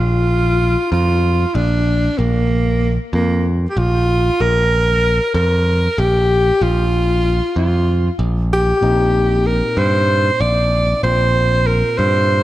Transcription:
Already playing: A#1 F4
0.92 F2 F4
1.55 A#1 D4
2.18 A#1 A#3
3.13 F2 A#3
3.70 G4
3.77 A#1 F4
4.40 A#1 A#4
5.34 F2 A#4
5.98 A#1 G4
6.61 A#1 F4
7.56 F2 F4
8.19 A#1
8.53 G4
8.81 A#1 A#2 A#3 C4 D#4
9.47 A#4
9.77 G2 C5
10.40 A#1 D5
11.03 A#1 A#2 A#3 C4 F4 C5
11.67 A#4
11.98 G2 C5

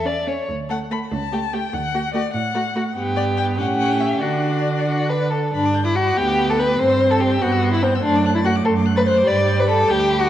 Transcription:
Already playing: E2 E5
0.05 C#4 D5
0.27 C#4 C#5
0.49 D2
0.69 A3 A4 F#5
0.90 A3 A4 B5
1.12 C#2 A5
1.32 A3 G4
1.53 A3 G4 G5
1.73 D2 F#5
1.94 A3 F#4
2.13 A3 F#4 D5
2.34 A2 F#5
2.54 A3 F#4
2.75 A3 F#4
2.95 G2 B3 G4
3.16 D5
3.37 G5
3.57 A2 C#4 G4 F#5
4.00 E5
4.21 D3 D4 F#4 D5
4.87 F#4
5.09 B4
5.31 A4
5.53 G2 D4 B5
5.65 D6
5.75 G6
5.85 E4 D6
5.96 F#4 B5
6.07 D6
6.16 D2 B3 G4 G6
6.27 D6
6.39 B5
6.49 A4 D6
6.58 B4 G6
6.68 D6
6.79 G2 C4 C5 C6
6.89 E6
7.00 G6
7.11 A4 E6
7.20 G4 C6
7.32 E6
7.41 G2 B3 F#4 G6
7.52 E6
7.64 C6
7.73 E4 E6
7.82 C4 G6
7.95 E6
8.03 F#2 A3 D4 C6
8.15 D6
8.25 F#6
8.35 E4 A6
8.45 F#4 F#6
8.56 D6
8.65 F#2 A4 C6
8.76 D6
8.86 F#6
8.96 B4 A6
9.07 C5 F#6
9.17 D6
9.26 G2 G3 D5 B5
9.36 D6
9.47 G6
9.57 B4 D6
9.68 A4 B5
9.79 D6
9.88 D2 G4 G6
9.99 D6
10.09 B5
10.19 F#4 D6

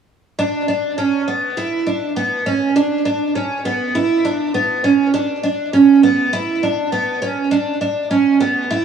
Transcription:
0.39 D4
0.68 D4
0.98 C#4
1.28 B3
1.57 E4
1.87 D4
2.17 B3
2.46 C#4
2.76 D4
3.05 D4
3.35 C#4
3.65 B3
3.95 E4
4.25 D4
4.54 B3
4.84 C#4
5.14 D4
5.44 D4
5.73 C#4
6.03 B3
6.33 E4
6.63 D4
6.92 B3
7.22 C#4
7.51 D4
7.81 D4
8.11 C#4
8.40 B3
8.71 E4

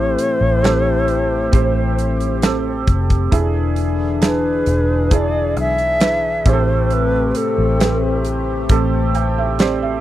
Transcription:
Already playing: A1 A2 E3 A3 C4 E4 G4 A4 C5
0.18 closed hi-hat
0.41 A1
0.63 C4 G4 A4, snare, closed hi-hat
1.08 closed hi-hat
1.52 A1 C4 G4 C5, kick, closed hi-hat
1.99 closed hi-hat
2.20 closed hi-hat
2.42 C4 G4 A4, snare, closed hi-hat
2.87 F1, kick, closed hi-hat
3.10 kick, closed hi-hat
3.31 E1 D3 E3 D4 E4 G#4, kick, closed hi-hat
3.76 closed hi-hat
4.22 D4 E4 G#4, snare, closed hi-hat
4.26 B4
4.66 E1, closed hi-hat
5.10 D4 E4 G#4, kick, closed hi-hat
5.15 D5
5.57 B1 E5, closed hi-hat
5.78 closed hi-hat
6.00 D4 E4 B4, snare, closed hi-hat
6.45 A1 A2 C3 A3 C4 G4 G#4 C5, kick, closed hi-hat
6.53 A4
6.90 B4, closed hi-hat
7.31 B4, closed hi-hat
7.37 A4
7.58 A1
7.79 C4 G4 B4, snare, closed hi-hat
8.25 closed hi-hat
8.69 A1 C4 G4 A4, kick, closed hi-hat
9.15 G5, closed hi-hat
9.38 E5
9.59 C4 G4 C5 D5, snare, closed hi-hat
9.82 E5

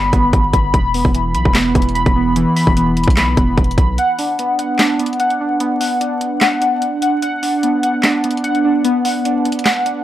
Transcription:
Already playing: G1 G3 B3 B5
0.13 G1 B3, kick, closed hi-hat
0.33 G1, kick, closed hi-hat
0.53 G1 B5, kick, closed hi-hat
0.74 E1 B5, kick, closed hi-hat
0.94 B3, open hi-hat
1.05 E1, kick
1.14 E3, closed hi-hat
1.35 B1 B5, closed hi-hat
1.45 E1, kick
1.55 B3, snare, clap, closed hi-hat
1.75 E1 E3, kick, closed hi-hat
1.82 closed hi-hat
1.89 closed hi-hat
1.95 B5, closed hi-hat
2.06 E1, kick, closed hi-hat
2.16 B3
2.36 E3, closed hi-hat
2.56 B5, open hi-hat
2.67 E1, kick
2.76 B3, closed hi-hat
2.97 closed hi-hat
3.03 closed hi-hat
3.08 B1, kick, closed hi-hat
3.17 B5, snare, clap, closed hi-hat
3.37 E1 B3, kick, closed hi-hat
3.58 E1, kick, closed hi-hat
3.64 closed hi-hat
3.71 closed hi-hat
3.78 B1 B5, kick, closed hi-hat
3.98 F#5, closed hi-hat
4.18 D4, open hi-hat
4.39 B3, closed hi-hat
4.59 F#5, closed hi-hat
4.79 D4, snare, clap, closed hi-hat
4.99 B3, closed hi-hat
5.06 closed hi-hat
5.13 closed hi-hat
5.20 F#5, closed hi-hat
5.30 closed hi-hat
5.41 D4
5.60 B3, closed hi-hat
5.80 F#5, open hi-hat
6.01 D4, closed hi-hat
6.21 closed hi-hat
6.41 F#5, snare, clap, closed hi-hat
6.61 D4, closed hi-hat
6.82 closed hi-hat
7.02 F#5, closed hi-hat
7.22 F#5, closed hi-hat
7.43 D4, open hi-hat
7.63 B3, closed hi-hat
7.83 F#5, closed hi-hat
8.03 D4, snare, clap, closed hi-hat
8.24 B3, closed hi-hat
8.31 closed hi-hat
8.37 closed hi-hat
8.44 F#5, closed hi-hat
8.55 closed hi-hat
8.64 D4
8.84 B3, closed hi-hat
9.05 F#5, open hi-hat
9.25 D4, closed hi-hat
9.45 closed hi-hat
9.52 closed hi-hat
9.59 closed hi-hat
9.65 F#5, snare, clap, closed hi-hat
9.86 D4, closed hi-hat

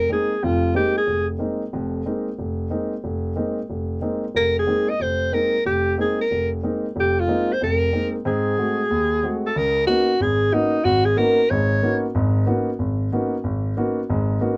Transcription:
0.10 G#3 A#3 C4 D#4 G#4
0.43 F1 F2 F4
0.74 G#3 A#3 C4 D#4 G4
0.97 G#4
1.07 F1
1.39 G#3 A#3 C4 D#4
1.73 F1 F2
2.06 G#3 A#3 C4 D#4
2.39 F1
2.70 G#3 A#3 C4 D#4
3.04 F1
3.36 G#3 A#3 C4 D#4
3.70 F1
4.01 G#3 A#3 C4 D#4
4.35 F1 A#4
4.59 G#4
4.67 G#3 A#3 C4 D#4
4.90 D#5
5.00 F1 C5
5.32 G#3 A#3 C4 D#4 A#4
5.66 F1 G4
5.98 G#3 A#3 C4 D#4 G#4
6.21 A#4
6.31 F1
6.63 G#3 A#3 C4 D#4
6.96 F1
7.00 G4
7.20 F4
7.28 G#3 A#3 C4 D#4
7.53 C5
7.61 F1 F2 A#4
7.93 G#3 A#3 C4 D#4
8.25 G#2 C4 G#4
8.58 G#3 A3 C4 F#4
8.91 D#2
9.23 G#3 A3 C4 F#4
9.46 A4
9.56 C#2 C#3 A#4
9.87 A#3 B3 C#4 D#4 F#4
10.20 G#1 G#4
10.53 A#3 B3 C#4 D#4 F#4
10.85 G#1 F#4
11.05 G#4
11.17 A#3 B3 C#4 D#4 F#4 A#4
11.50 G#1 G#2 C#5
11.82 A#3 B3 C#4 D#4 F#4
12.15 G#1 G#2
12.46 A#3 B3 C#4 D#4 F#4
12.79 G#1
13.12 A#3 B3 C#4 D#4 F#4
13.44 G#1
13.77 A#3 B3 C#4 D#4 F#4
14.10 G#1 G#2
14.41 A#3 B3 C#4 D#4 F#4

